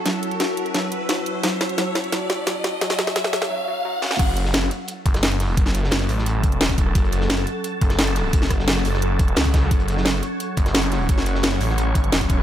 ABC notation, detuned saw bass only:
X:1
M:4/4
L:1/8
Q:1/4=174
K:F#m
V:1 name="Detuned saw bass" clef=bass
z8 | z8 | z8 | F,,,3 z2 F,,, F,,,2 |
F,,,3 A,,,3 E,,,2 | F,,,3 z2 F,,, F,,,2 | F,,,3 F,,,3 C,,2 | F,,,3 z2 F,,, F,,,2 |
F,,,3 A,,,3 E,,,2 |]